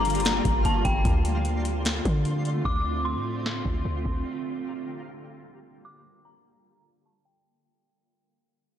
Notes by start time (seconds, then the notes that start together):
Already playing: G1 D3 G3 A#3 F4 G4 F5 A#5
0.05 closed hi-hat
0.10 closed hi-hat
0.15 closed hi-hat
0.20 closed hi-hat
0.25 snare, closed hi-hat
0.45 G1, kick, closed hi-hat
0.65 G1 A5, closed hi-hat
0.85 G1 G5, kick, closed hi-hat
1.05 D2 D3 A3 C4 F4 D5 C6, kick, closed hi-hat
1.25 closed hi-hat
1.45 closed hi-hat
1.65 closed hi-hat
1.85 snare, closed hi-hat
2.05 D3, kick, closed hi-hat
2.25 closed hi-hat
2.45 closed hi-hat
2.65 D2 D6, kick
3.05 C6
3.15 A2
3.46 snare
3.65 D2, kick
3.85 D2
4.05 D2, kick
4.25 D3 G3 A#3 G4 F5 A#5
5.85 D6
6.25 A#5
7.06 A5
7.25 G5